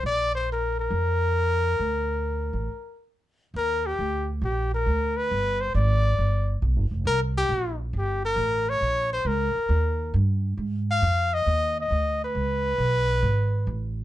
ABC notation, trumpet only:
X:1
M:4/4
L:1/8
Q:"Swing" 1/4=136
K:Bb
V:1 name="Trumpet"
d c B B4- B- | B6 z2 | [K:Ablyd] B G2 z G B2 _c- | _c =c d4 z2 |
B G2 z G B2 _d- | _d c B4 z2 | z f2 e2 e2 _c- | _c6- c z |]